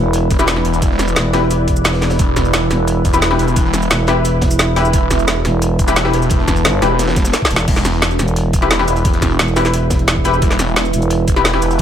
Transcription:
Already playing: fm bass E1, ambient pad E4 B4 D5
0.13 closed hi-hat, shaker
0.31 detuned saw bass E1, kick, closed hi-hat, shaker
0.39 synth stab E4 G4 B4, snare, shaker
0.47 snare, closed hi-hat, shaker
0.56 snare
0.65 detuned saw bass E1, closed hi-hat
0.73 closed hi-hat, shaker
0.82 kick, closed hi-hat, shaker
0.91 snare
0.99 snare, closed hi-hat, open hi-hat, shaker
1.07 closed hi-hat, shaker
1.16 fm bass E1, snare, closed hi-hat, shaker
1.33 synth stab E4 G4 B4, snare, closed hi-hat, shaker
1.51 closed hi-hat, shaker
1.68 kick, closed hi-hat, shaker
1.76 shaker
1.84 snare, closed hi-hat, shaker
1.93 snare, closed hi-hat
2.01 snare, closed hi-hat
2.10 snare, closed hi-hat, shaker
2.19 detuned saw bass E1, ambient pad E5, kick, closed hi-hat, shaker
2.36 kick, snare, closed hi-hat, shaker
2.45 closed hi-hat, shaker
2.54 snare, closed hi-hat, shaker
2.70 fm bass E1, snare, closed hi-hat, shaker
2.87 closed hi-hat, shaker
3.05 detuned saw bass E1, kick, closed hi-hat, shaker
3.14 synth stab E4 G4 B4, snare, shaker
3.22 snare, closed hi-hat, shaker
3.31 synth stab E4 G4 B4, snare
3.39 detuned saw bass E1, closed hi-hat
3.47 closed hi-hat, shaker
3.56 kick, closed hi-hat, shaker
3.65 snare
3.74 snare, closed hi-hat, open hi-hat, shaker
3.82 closed hi-hat, shaker
3.91 fm bass E1, snare, closed hi-hat, shaker
4.07 synth stab E4 G4 B4, snare, closed hi-hat, shaker
4.25 closed hi-hat, shaker
4.41 kick, snare, closed hi-hat, shaker
4.51 shaker
4.59 snare, closed hi-hat, shaker
4.76 synth stab E4 G4 B4, snare, closed hi-hat
4.85 shaker
4.93 detuned saw bass E1, ambient pad A5, kick, closed hi-hat, shaker
5.11 kick, snare, closed hi-hat, shaker
5.19 closed hi-hat, shaker
5.28 snare, closed hi-hat, shaker
5.45 fm bass E1, snare, closed hi-hat, shaker
5.62 closed hi-hat, shaker
5.79 detuned saw bass E1, kick, closed hi-hat, shaker
5.87 synth stab E4 G4 B4, snare, closed hi-hat, shaker
5.96 snare, closed hi-hat, shaker
6.05 synth stab E4 G4 B4, snare
6.13 detuned saw bass E1, closed hi-hat
6.22 closed hi-hat, shaker
6.30 kick, closed hi-hat, shaker
6.38 snare
6.48 kick, snare, closed hi-hat, open hi-hat, shaker
6.56 closed hi-hat, shaker
6.65 fm bass G1, snare, closed hi-hat, shaker
6.82 detuned saw bass E1, synth stab E4 G4 B4, snare, closed hi-hat, shaker
6.99 snare, closed hi-hat, shaker
7.07 snare, closed hi-hat
7.16 detuned saw bass E1, kick, snare, closed hi-hat, shaker
7.24 snare, closed hi-hat, shaker
7.33 snare, closed hi-hat, shaker
7.42 kick, snare
7.50 fm bass E1, snare, closed hi-hat
7.56 snare, shaker
7.68 detuned saw bass E1, ambient pad E4 B4 E5, kick, closed hi-hat, crash
7.76 snare, closed hi-hat
7.85 snare, closed hi-hat, shaker
7.94 closed hi-hat
8.02 snare, closed hi-hat
8.11 shaker
8.19 fm bass E1, snare, closed hi-hat, shaker
8.28 closed hi-hat, shaker
8.36 closed hi-hat
8.53 detuned saw bass E1, kick, closed hi-hat, shaker
8.62 synth stab E4 G4 B4, snare, closed hi-hat
8.71 snare, closed hi-hat
8.79 synth stab E4 G4 B4, snare
8.88 detuned saw bass E1, closed hi-hat, shaker
8.96 closed hi-hat, shaker
9.05 kick, closed hi-hat
9.13 snare, closed hi-hat
9.22 kick, snare, closed hi-hat, open hi-hat, shaker
9.31 closed hi-hat
9.39 fm bass E1, snare, closed hi-hat
9.48 shaker
9.56 synth stab E4 G4 B4, snare, closed hi-hat, open hi-hat, shaker
9.65 snare, closed hi-hat, shaker
9.74 closed hi-hat
9.90 kick, snare, closed hi-hat, shaker
9.99 closed hi-hat
10.08 snare, closed hi-hat
10.16 kick
10.24 synth stab E4 G4 B4, snare, closed hi-hat, shaker
10.34 shaker
10.42 detuned saw bass E1, kick, closed hi-hat
10.51 snare, closed hi-hat
10.59 snare, closed hi-hat, shaker
10.67 closed hi-hat
10.76 snare, closed hi-hat
10.85 shaker
10.93 fm bass E1, closed hi-hat, shaker
11.02 closed hi-hat, shaker
11.10 closed hi-hat
11.28 detuned saw bass E1, kick, closed hi-hat, shaker
11.36 synth stab E4 G4 B4, snare, closed hi-hat
11.45 snare, closed hi-hat
11.53 synth stab E4 G4 B4, snare
11.62 detuned saw bass E1, closed hi-hat, shaker
11.71 closed hi-hat, shaker
11.79 closed hi-hat

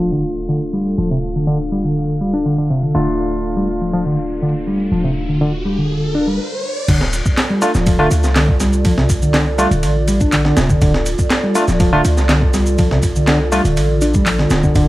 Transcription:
Already playing: 808-style bass D1, tine electric piano A3 D4 F4, analog synth pad D4 F4 A4 F5, sub drop
0.12 reed electric piano D3
0.49 reed electric piano D3
0.73 reed electric piano G3
0.98 808-style bass D1, reed electric piano F3
1.11 reed electric piano C3
1.36 reed electric piano D3
1.47 reed electric piano D3
1.72 reed electric piano G3
1.84 reed electric piano D3
2.21 reed electric piano G3
2.34 reed electric piano D4
2.46 reed electric piano D3
2.58 reed electric piano D3
2.70 reed electric piano C3
2.83 reed electric piano D3
2.95 808-style bass D1, reed electric piano D3, tine electric piano A3 D4 F4, riser
3.56 reed electric piano G3
3.81 reed electric piano F3
3.93 reed electric piano F3
4.06 reed electric piano D3
4.42 reed electric piano D3
4.67 reed electric piano G3
4.92 808-style bass D1, reed electric piano F3
5.04 reed electric piano C3
5.29 reed electric piano D3
5.41 reed electric piano D3
5.65 reed electric piano G3
5.78 reed electric piano D3
6.15 reed electric piano D4
6.28 reed electric piano G3
6.88 808-style bass D1, reed electric piano D3, analog synth pad F4 A4 D5, kick, crash, ride, shaker
7.01 snare
7.13 ride, shaker
7.26 kick, shaker
7.38 snare, clap, ride, shaker
7.50 reed electric piano G3
7.62 tine electric piano A3 D4 F4, ride, shaker
7.74 808-style bass D1, reed electric piano F3, snare, shaker
7.86 reed electric piano F3, kick, ride, shaker
7.99 reed electric piano D3, tine electric piano A3 D4 F4
8.11 808-style bass D2, ride, shaker
8.24 808-style bass C2, snare, shaker
8.36 reed electric piano D3, snare, clap, ride, shaker
8.48 kick
8.60 reed electric piano G3, snare, ride, shaker
8.73 shaker
8.85 reed electric piano F3, kick, ride, shaker
8.98 reed electric piano C3, snare
9.10 kick, ride, shaker
9.22 reed electric piano D3, shaker
9.34 reed electric piano D3, snare, clap, ride, shaker
9.58 reed electric piano G3, tine electric piano A3 D4 F4, ride, shaker
9.71 808-style bass D1, reed electric piano D3, ride, shaker
9.83 808-style bass A1, ride, shaker
10.08 reed electric piano G3, ride, shaker
10.20 reed electric piano D4, kick, shaker
10.32 reed electric piano D3, clap, ride, shaker
10.45 reed electric piano D3, snare
10.57 808-style bass D1, reed electric piano C3, snare, ride, shaker
10.70 reed electric piano D3, kick, shaker
10.82 808-style bass D1, reed electric piano D3, kick, ride, shaker
10.94 snare
11.06 ride, shaker
11.19 kick, shaker
11.30 snare, clap, ride, shaker
11.43 reed electric piano G3
11.55 tine electric piano A3 D4 F4, ride, shaker
11.68 808-style bass D1, reed electric piano F3, snare, shaker
11.80 reed electric piano F3, kick, ride, shaker
11.93 reed electric piano D3, tine electric piano A3 D4 F4
12.05 808-style bass D2, ride, shaker
12.17 808-style bass C2, snare, shaker
12.29 reed electric piano D3, snare, clap, ride, shaker
12.42 kick
12.54 reed electric piano G3, snare, ride, shaker
12.66 shaker
12.78 reed electric piano F3, kick, ride, shaker
12.91 reed electric piano C3, snare
13.03 kick, ride, shaker
13.16 reed electric piano D3, shaker
13.27 reed electric piano D3, snare, clap, ride, shaker
13.52 reed electric piano G3, tine electric piano A3 D4 F4, ride, shaker
13.65 808-style bass D1, reed electric piano D3, ride, shaker
13.76 808-style bass A1, ride, shaker
14.01 reed electric piano D4, ride, shaker
14.14 reed electric piano G3, kick, shaker
14.26 reed electric piano F3, clap, ride, shaker
14.39 reed electric piano D3, snare
14.50 808-style bass D1, reed electric piano D3, snare, ride, shaker
14.63 reed electric piano D3, kick, shaker
14.75 808-style bass D1, reed electric piano D3, analog synth pad G5, kick, ride, shaker

